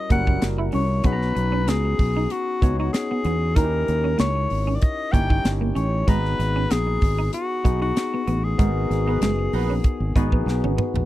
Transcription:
Already playing: tine electric piano G3 C#4 E4 F#4 A#4
0.10 fingered electric bass F#1, tine electric piano G3 C#4 E4 F#4 A#4, clean electric guitar A#3, alto saxophone F#5, kick, closed hi-hat
0.27 clean electric guitar C#4, kick
0.41 fingered electric bass F#1, muted clean electric guitar stroke, snare, closed hi-hat
0.58 clean electric guitar E4
0.72 fingered electric bass C2, clean electric guitar C#4, alto saxophone C#5, open hi-hat
1.04 fingered electric bass B1, clean electric guitar B3, tine electric piano B3 C#4 D#4 F#4 G#4, alto saxophone B4, kick, closed hi-hat
1.12 tine electric piano A#5
1.22 snare
1.35 fingered electric bass B1, muted clean electric guitar stroke, closed hi-hat
1.52 clean electric guitar C#4
1.67 fingered electric bass C#2, clean electric guitar B3, alto saxophone G#4, snare, closed hi-hat
1.85 muted clean electric guitar stroke
1.99 fingered electric bass B1, kick, open hi-hat
2.17 clean electric guitar D#4
2.30 alto saxophone F#4, muted clean electric guitar stroke, closed hi-hat
2.62 fingered electric bass C#2, tine electric piano B3 C#4 D#4 F#4 C#5, clean electric guitar B3, kick, closed hi-hat
2.79 clean electric guitar D#4, alto saxophone F#4
2.93 alto saxophone G#4, muted clean electric guitar stroke, snare, closed hi-hat
3.11 clean electric guitar B3
3.24 fingered electric bass E2, clean electric guitar B3, closed hi-hat
3.56 fingered electric bass D#2, tine electric piano C#4 D#4 E4 F#4 A#4, clean electric guitar D#4, alto saxophone A#4, kick, closed hi-hat
3.64 tine electric piano G4
3.87 fingered electric bass D#2, muted clean electric guitar stroke, closed hi-hat
4.04 clean electric guitar C#4
4.18 fingered electric bass C#2, clean electric guitar A#3, alto saxophone C#5, snare, closed hi-hat
4.36 muted clean electric guitar stroke
4.50 fingered electric bass G#1, open hi-hat
4.67 clean electric guitar C#4
4.76 alto saxophone D5
4.81 alto saxophone D#5, muted clean electric guitar stroke, kick, closed hi-hat
5.12 fingered electric bass G1, clean electric guitar A#3, tine electric piano C#4 D#4 E4 G4 C#5, alto saxophone G5, kick, closed hi-hat
5.30 clean electric guitar D#4, kick
5.44 fingered electric bass G1, muted clean electric guitar stroke, snare, closed hi-hat
5.61 clean electric guitar A#3
5.75 fingered electric bass A1, clean electric guitar C#4, alto saxophone C#5, closed hi-hat
6.07 fingered electric bass G#1, clean electric guitar G#3, tine electric piano B3 D#4 F#4 G#4 A#5, alto saxophone B4, kick, closed hi-hat
6.25 snare
6.39 fingered electric bass G#1, muted clean electric guitar stroke, snare, closed hi-hat
6.56 clean electric guitar C#4
6.70 fingered electric bass A#1, clean electric guitar B3, alto saxophone G#4, snare, closed hi-hat
6.87 muted clean electric guitar stroke
7.01 fingered electric bass G#1, kick, open hi-hat
7.18 clean electric guitar D#4
7.33 alto saxophone F#4, muted clean electric guitar stroke, closed hi-hat
7.64 fingered electric bass B1, tine electric piano B3 D#4 F#4 G#4 B4, clean electric guitar B3, kick, closed hi-hat
7.82 clean electric guitar D#4, alto saxophone F#4
7.96 muted clean electric guitar stroke, snare, closed hi-hat
8.14 clean electric guitar B3
8.27 fingered electric bass A1, clean electric guitar B3, closed hi-hat
8.44 alto saxophone G#4
8.58 fingered electric bass G#1, clean electric guitar G#3, tine electric piano B3 D#4 F#4 G#4 A#4, kick, closed hi-hat
8.90 fingered electric bass G#1, muted clean electric guitar stroke, snare, closed hi-hat
9.06 horn section F#3 B3 D#4 B4, clean electric guitar B3
9.21 fingered electric bass F#1, clean electric guitar G#3, snare, closed hi-hat
9.39 muted clean electric guitar stroke
9.53 fingered electric bass A#1, horn section F#3 B3 D#4 B4, open hi-hat
9.70 clean electric guitar C#4
9.84 muted clean electric guitar stroke, kick, closed hi-hat
10.00 fingered electric bass G#1
10.16 fingered electric bass G#1, clean electric guitar B3, tine electric piano B3 D#4 F#4 G#4 B4, kick, closed hi-hat
10.32 fingered electric bass A#1, clean electric guitar B3, kick
10.46 fingered electric bass B1, muted clean electric guitar stroke, snare
10.64 fingered electric bass G#1, clean electric guitar C#4, high tom
10.78 clean electric guitar B3, mid tom
10.94 fingered electric bass A#1, floor tom

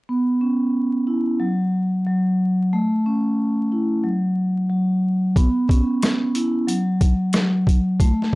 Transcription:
0.09 vibraphone B3
0.41 vibraphone C#4
1.07 vibraphone E4
1.40 vibraphone F#3
2.06 vibraphone F#3
2.73 vibraphone A3
3.06 vibraphone C#4
3.72 vibraphone E4
4.03 vibraphone F#3
4.70 vibraphone F#3
5.36 vibraphone B3, kick, closed hi-hat
5.69 vibraphone C#4, kick, closed hi-hat
6.03 cross-stick, snare, closed hi-hat
6.35 vibraphone E4, closed hi-hat
6.67 vibraphone F#3, closed hi-hat
7.01 kick, closed hi-hat
7.33 vibraphone F#3, cross-stick, snare, closed hi-hat
7.67 kick, closed hi-hat
8.00 vibraphone A3, kick, closed hi-hat
8.22 snare

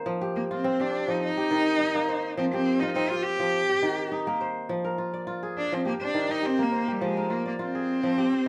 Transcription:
Already playing: kora D#3 A#3 C4 D#4 G4 C5
0.06 kora F3
0.21 kora G4
0.36 cello A#3
0.51 cello C4, kora F4
0.64 kora C4
0.80 cello D4, kora G4
1.08 kora F3, cello D#4
1.23 cello D#4
1.37 kora G4
1.51 kora D#3
1.79 kora D#4
1.95 kora A#3
2.08 kora C5
2.37 kora F3, cello C4
2.52 cello C4, kora G4
2.80 cello D#4, kora F4
2.88 cello D#4
2.92 kora C4, cello D#4
3.09 cello F4, kora G4
3.22 cello G4
3.40 kora F3
3.69 kora G4
3.82 kora D#3
4.12 kora D#4
4.27 kora A#3
4.41 kora C5
4.69 kora F3
4.84 kora A#4
4.98 kora F4
5.14 kora D5
5.27 kora F4
5.43 kora G#4
5.57 cello D4
5.72 kora F3, cello C4
5.85 cello A#3, kora G4
6.01 cello D4, kora C5
6.14 kora D#3
6.29 cello D#4, kora G4
6.43 cello C4, kora G4
6.59 kora A#3, cello A#3
6.72 kora C5
6.88 cello G3, kora G4
7.01 kora F3, cello G#3
7.17 kora A#4
7.30 cello A#3, kora F4
7.46 cello A#3, kora D5
7.59 cello C4, kora F4
7.75 kora G#4
8.03 kora F3
8.18 kora G4
8.33 kora C5

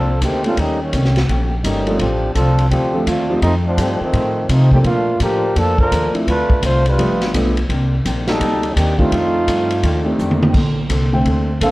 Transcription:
Already playing: upright bass C2, trombone section F3 C4 D4 A4, hollow-body jazz guitar A#3 D4 A4 C5
0.21 upright bass D2, trombone section D#3 A3 C4 G4, hollow-body jazz guitar A#3 D4 A4 C5, kick, hi-hat pedal, ride
0.44 grand piano G3 A#3 C#4 D#4 A4, trombone section A3 C4 D4 F4, ride
0.57 upright bass D#2, hollow-body jazz guitar D#3 A3 C#4 G4, trombone section G3 A#3 C#4 D#4, kick, ride
0.82 trombone section D#3 G3 A#3 C#4
0.93 upright bass C2, hollow-body jazz guitar D#3 A3 C#4 G4, kick, hi-hat pedal, ride
1.05 snare
1.16 snare, ride
1.28 upright bass A#1, hollow-body jazz guitar D#3 A3 C#4 G4, kick, ride
1.64 upright bass G1, hollow-body jazz guitar D#3 A3 C#4 G4, trombone section G3 A#3 C#4 D#4, kick, hi-hat pedal, ride
1.87 grand piano F3 A3 C4 D4 A4, ride
1.99 upright bass A1, hollow-body jazz guitar D3 A3 C4 F4, trombone section F3 C4 D4 G4, kick, ride
2.34 upright bass C2, hollow-body jazz guitar D3 A3 C4 F4, trombone section F3 C4 D4 A4, kick, hi-hat pedal, ride
2.59 ride
2.69 upright bass D2, hollow-body jazz guitar D3 A3 C4, trombone section F3 C4 D4 G4, kick, ride
2.74 hollow-body jazz guitar F4
2.94 grand piano F3 A3 C4 D4 A4
3.06 upright bass D#2, hollow-body jazz guitar D3 A3 C4 F4, trombone section A3 C4 D4 F4, kick, hi-hat pedal, ride
3.30 grand piano F3 A3 C4 D#4 G4
3.42 upright bass F2, hollow-body jazz guitar F2 D#3 A3, trombone section F3 A3 C4 D#4, kick, ride
3.46 hollow-body jazz guitar C4
3.65 trombone section F3 A3 C4 D4
3.77 hollow-body jazz guitar F2 D#3 A3 C4, upright bass G2, grand piano F3 A3 C4 D#4 G4, kick, hi-hat pedal, ride
4.01 trombone section D#3 F3 A3 C4, muted upright bass stroke
4.13 hollow-body jazz guitar F2 D#3 A3 C4, upright bass A2, kick, ride
4.49 hollow-body jazz guitar F2 D#3 A3 C4, upright bass C3, trombone section F3 A3 C4 D#4, kick, hi-hat pedal, ride
4.71 trombone section D#3 A3 C4 G4, grand piano F3 A#3 C4 D4 A4, kick
4.84 hollow-body jazz guitar A#2 F3 A3 D4, upright bass A#2, trombone section A3 A#3 D4 F4, kick, ride
5.20 upright bass A2, hollow-body jazz guitar A#2 F3 A3 D4, trombone section F3 D4 G4 A#4, kick, hi-hat pedal, ride
5.56 upright bass F2, hollow-body jazz guitar A#2 F3 A3 D4, trombone section F3 A#3 D4 A4, kick, ride
5.78 trombone section F3 D4 A4 A#4, kick
5.91 upright bass D#2, hollow-body jazz guitar A#2 F3 A3 D4, kick, hi-hat pedal, ride
6.14 grand piano F3 A3 C4 D4 E4, muted upright bass stroke, ride
6.27 upright bass D2, hollow-body jazz guitar D3 A3 C4 F4, trombone section A3 D4 F4 B4, kick, ride
6.50 kick
6.62 upright bass C2, hollow-body jazz guitar D3 A3 C4 F4, trombone section A3 D4 F4 C5, kick, hi-hat pedal, ride
6.86 trombone section G3 D4 F4 B4, ride
6.98 upright bass G1, hollow-body jazz guitar G2 F3 B3 D4, grand piano F3 A3 B3 D4 G4, kick, ride
7.21 snare, ride
7.34 upright bass B1, hollow-body jazz guitar G2 F3 B3 D4, grand piano F3 A3 B3 D4 A4, kick, hi-hat pedal, ride
7.57 ride
7.69 upright bass C2, hollow-body jazz guitar C3 D#3 A#3 D4, kick, ride
8.05 upright bass A#1, hollow-body jazz guitar C3 D#3 A#3 D4, kick, hi-hat pedal, ride
8.27 trombone section G3 D4 D#4 A4, snare, ride
8.40 upright bass D2, hollow-body jazz guitar C3 D#3 A#3 D4, kick, ride
8.63 ride
8.76 upright bass D#2, hollow-body jazz guitar C3 D#3 A#3 D4, trombone section D#3 A#3 D4 G4, kick, hi-hat pedal, ride
8.97 grand piano D#3 A3 C4 D4 G4, trombone section A3 C4 D#4 F4, kick
9.11 hollow-body jazz guitar F2 D#3 A3 D4, upright bass F2, kick, ride
9.47 hollow-body jazz guitar F2 D#3 A3 D4, upright bass G2, kick, hi-hat pedal, ride
9.71 ride
9.83 upright bass D#2, hollow-body jazz guitar F2 D#3 A3 D4, kick, ride
10.05 grand piano D#3 A3 C4 D4 G4
10.19 upright bass F2, hollow-body jazz guitar F2 D#3 A3 D4, hi-hat pedal
10.31 high tom
10.43 high tom
10.54 upright bass A#1, hollow-body jazz guitar A#3 D4 A4 C5, kick, crash
10.89 upright bass C2, hollow-body jazz guitar A#3 D4 A4 C5, kick, hi-hat pedal, ride
11.13 grand piano D3 A3 C4 G5
11.25 upright bass D2, hollow-body jazz guitar A#3 D4 A4 C5, kick, ride
11.60 upright bass A#1, trombone section D3 A#3 C4 A4, hollow-body jazz guitar A#3 D4 A4 C5, grand piano F5, kick, hi-hat pedal, ride

